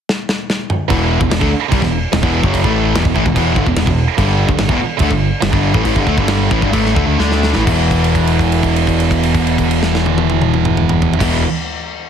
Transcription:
0.09 snare
0.29 snare
0.50 snare
0.70 mid tom
0.90 fingered electric bass E1, overdriven electric guitar E2 B2 E3, kick, crash
1.20 fingered electric bass E1, overdriven electric guitar E2 B2, kick
1.31 fingered electric bass E1, overdriven electric guitar E2 B2, snare, crash
1.41 fingered electric bass D2, overdriven electric guitar D3 A3, kick
1.49 muted distorted electric guitar stroke, muted overdriven electric guitar stroke, muted fingered electric bass stroke
1.71 fingered electric bass C2, overdriven electric guitar C3 G3, kick, crash
1.82 fingered electric bass E1, overdriven electric guitar E2 B2, kick, snare
2.12 fingered electric bass E1, overdriven electric guitar E2 B2, snare, crash
2.22 fingered electric bass E1, overdriven electric guitar E2 B2 E3, kick
2.43 fingered electric bass F#1, overdriven electric guitar F#2 C#3 F#3, kick
2.54 kick, crash
2.64 fingered electric bass A1, overdriven electric guitar A2 E3 A3, kick
2.94 fingered electric bass E1, overdriven electric guitar E2 B2, snare, crash
3.05 fingered electric bass E1, overdriven electric guitar E2 B2, kick
3.15 fingered electric bass A1, overdriven electric guitar A2 E3, kick
3.26 fingered electric bass E1, overdriven electric guitar E2 B2, kick
3.36 fingered electric bass E1, overdriven electric guitar E2 B2 E3, kick, crash
3.56 fingered electric bass G1, overdriven electric guitar G2 D3, kick
3.66 fingered electric bass E1, overdriven electric guitar E2 B2, kick
3.76 fingered electric bass E1, overdriven electric guitar E2 B2, snare, crash
3.87 fingered electric bass E1, overdriven electric guitar E2 B2, kick
4.18 fingered electric bass G1, overdriven electric guitar G2 D3 G3, kick, crash
4.49 fingered electric bass G1, overdriven electric guitar G2 D3, kick
4.58 fingered electric bass G1, overdriven electric guitar G2 D3, snare, crash
4.69 fingered electric bass E1, overdriven electric guitar E2 B2, kick
4.79 muted distorted electric guitar stroke, muted fingered electric bass stroke, muted overdriven electric guitar stroke
4.97 fingered electric bass D2, distorted electric guitar D3 A3, kick, crash
5.02 overdriven electric guitar D3 A3
5.10 fingered electric bass G1, overdriven electric guitar G2 D3, kick
5.42 fingered electric bass G1, overdriven electric guitar G2 D3, snare, crash
5.53 fingered electric bass G1, overdriven electric guitar G2 D3 G3, kick
5.74 fingered electric bass A1, overdriven electric guitar A2 E3, kick
5.85 fingered electric bass A1, overdriven electric guitar A2 E3, kick, crash
5.96 fingered electric bass G1, overdriven electric guitar G2 D3, kick
6.07 fingered electric bass D2, overdriven electric guitar D3 A3, kick
6.17 fingered electric bass G1, overdriven electric guitar G2 D3 G3, kick
6.28 snare, crash
6.51 fingered electric bass A1, overdriven electric guitar A2 E3, kick
6.61 fingered electric bass G1, overdriven electric guitar G2 D3, kick
6.72 fingered electric bass A1, overdriven electric guitar A2 E3 A3, kick, crash
6.85 snare
6.95 fingered electric bass D2, overdriven electric guitar D3 A3, kick
7.06 fingered electric bass D2, overdriven electric guitar D3 A3
7.19 fingered electric bass D2, overdriven electric guitar D3 A3 D4, snare
7.32 snare
7.43 snare
7.53 fingered electric bass A1, overdriven electric guitar A2 E3, snare
7.64 fingered electric bass E1, overdriven electric guitar E2 B2, kick, crash
7.69 overdriven electric guitar E3
7.91 kick, crash
8.04 crash
8.15 kick, crash
8.27 crash
8.39 kick, crash
8.52 crash
8.63 kick, crash
8.76 crash
8.87 kick, crash
9.00 crash
9.11 kick, crash
9.23 crash
9.34 kick, crash
9.47 crash
9.58 kick, crash
9.71 crash
9.83 snare
9.95 snare
10.06 high tom
10.18 high tom
10.30 high tom
10.42 mid tom
10.54 mid tom
10.65 mid tom
10.77 mid tom
10.89 mid tom
11.02 floor tom
11.14 floor tom
11.19 fingered electric bass E1, overdriven electric guitar E2 B2 E3, kick, snare, crash

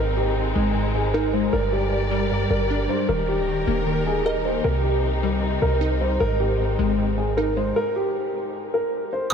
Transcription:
Already playing: 808-style bass G#1, synth pluck G#2, string section G#3 C4 D#4, grand piano A#4
0.17 synth pluck G#2, grand piano G4
0.36 synth pluck G#2
0.55 808-style bass G#1, synth pluck G#3
0.75 synth pluck G#2
0.94 synth pluck G#2, grand piano G#4
1.14 synth pluck D#4, grand piano A#4
1.33 synth pluck G#3, grand piano C5
1.52 808-style bass G1, synth pluck G2, string section G3 G4 A#4 D5, grand piano A#4
1.72 synth pluck G2, grand piano G4
1.92 synth pluck G2
2.11 synth pluck G3
2.31 synth pluck G2
2.50 808-style bass G1, synth pluck G2, grand piano A#4
2.70 synth pluck D4
2.89 synth pluck G3, grand piano C5
3.09 808-style bass D#1, string section D#3 D#4 A#4, synth pluck D#3, grand piano A#4
3.28 synth pluck D#3, grand piano G4
3.47 synth pluck D#3
3.67 808-style bass D#1, synth pluck A#3
3.86 synth pluck D#3
4.06 synth pluck D#3, grand piano G#4
4.26 grand piano A#4, synth pluck D#5
4.45 synth pluck A#3, grand piano C5
4.64 808-style bass C2, synth pluck C3, string section C3 C4, grand piano A#4
4.84 synth pluck C3, grand piano G4
5.04 synth pluck C3
5.23 synth pluck G3
5.43 synth pluck C3
5.62 808-style bass C2, synth pluck C3, grand piano A#4
5.81 synth pluck D#4
6.01 synth pluck G3, grand piano C5
6.20 808-style bass G#1, synth pluck G#2, string section G#3 C4, grand piano A#4
6.40 synth pluck G#2, grand piano G4
6.60 synth pluck G#2
6.79 808-style bass G#1, synth pluck G#3
6.98 synth pluck G#2
7.18 synth pluck G#2, grand piano G#4
7.37 synth pluck D#4, grand piano A#4
7.57 synth pluck G#3, grand piano C5
7.76 grand piano A#4
7.96 grand piano G4
8.74 grand piano A#4
9.13 grand piano C5

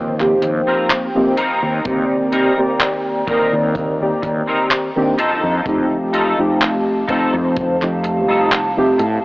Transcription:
Already playing: fretless electric bass D#2, synth keys F3 A#3 C4 D#4 C5, ambient pad C5 F5 G5
0.19 synth keys F3 A#3 C4 D#4 G4, clap
0.42 fretless electric bass D#2, muted clean electric guitar stroke, closed hi-hat
0.67 clean electric guitar C4 F4 A#4
0.90 clap, closed hi-hat
1.14 synth keys F3 A#3 C4 D#4 G4
1.37 clean electric guitar C4 D#4 A#4, ambient pad A#5, closed hi-hat
1.63 fretless electric bass D#2
1.84 fretless electric bass D#2, synth keys D#3 A#3 C4 G4 D5, kick, closed hi-hat
2.32 clean electric guitar C4 D#4 A#4, closed hi-hat
2.57 synth keys D#3 A#3 C4 G4 D5
2.80 clap, closed hi-hat
3.27 synth keys D#3 A#3 C4 A#4 D5, clean electric guitar C4 D#4 A#4, kick, closed hi-hat
3.53 fretless electric bass D#2
3.75 kick, closed hi-hat
4.01 synth keys D#3 A#3 C4 G4 D5
4.23 fretless electric bass D#2, muted clean electric guitar stroke, kick, closed hi-hat
4.47 clean electric guitar C4 D#4 A#4
4.71 clap, closed hi-hat
4.96 synth keys D#3 A#3 C4 D4 G4
5.18 clean electric guitar D#4 F4 A4, ambient pad F5 A5, closed hi-hat
5.43 fretless electric bass F2
5.65 fretless electric bass F2, synth keys F3 A3 C4 D#4 G4, kick, closed hi-hat
6.13 clean electric guitar D#4 F4 A4, closed hi-hat
6.38 synth keys F3 A3 C4 D#4 G4
6.61 clap, closed hi-hat
7.08 synth keys F3 A3 C4 D#4 C5, clean electric guitar D#4 F4 A4, kick, closed hi-hat
7.34 fretless electric bass F2
7.56 kick, closed hi-hat
7.81 synth keys F3 A3 C4 D#4 G4, clap
8.04 muted clean electric guitar stroke, closed hi-hat
8.28 fretless electric bass C2, clean electric guitar D#4 F4 A4
8.52 clap, closed hi-hat
8.77 synth keys F3 A3 C4 D#4 G4
8.98 fretless electric bass A2, muted clean electric guitar stroke, closed hi-hat

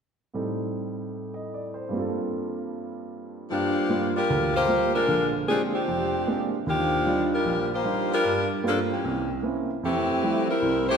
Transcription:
0.34 grand piano A2 G3 C4 D#4 A4
1.34 grand piano D#5
1.54 grand piano D5
1.74 grand piano C5
1.89 grand piano G2 G3
1.93 grand piano A#3 C4 F4
1.99 grand piano A4
3.50 grand piano G2, saxophone section F3 A#3 D4 G4
3.89 grand piano G3 A#3 F4
4.15 saxophone section G3 D4 F4 A#4
4.30 grand piano D2
4.55 saxophone section A#3 F4 G4 C5
4.68 grand piano G3 A#3 F4
4.94 saxophone section G#3 D4 F4 A#4
5.08 grand piano A#1 D3
5.48 saxophone section F3 C4 D4 G#4, grand piano G#3 A#3 C4 D4 G4
5.73 saxophone section F3 C4 D4 G4
5.88 grand piano F1
6.27 grand piano G#3 A#3 C4 D4 G4
6.66 grand piano D#2, saxophone section F3 A#3 D4 G4
7.06 grand piano G3 D4 D#4 F4
7.33 saxophone section G3 D4 F4 A#4
7.45 grand piano A#1
7.73 saxophone section A#3 F4 G4 C5
7.84 grand piano G3 D4 D#4 F4
8.13 saxophone section G3 D4 F4 A#4
8.24 grand piano G2
8.63 saxophone section F3 A#3 D4, grand piano G3 A#3 F4
8.67 saxophone section A4
8.91 saxophone section E3 A#3 C#4 G4
9.05 grand piano C2
9.43 grand piano A#3 C4 C#4 E4
9.83 grand piano F2, saxophone section E3 A3 C4 G4
10.22 grand piano F3 G3 A3 E4
10.49 saxophone section G3 C4 E4 A#4
10.62 grand piano C2
10.89 saxophone section A3 E4 G4 C5

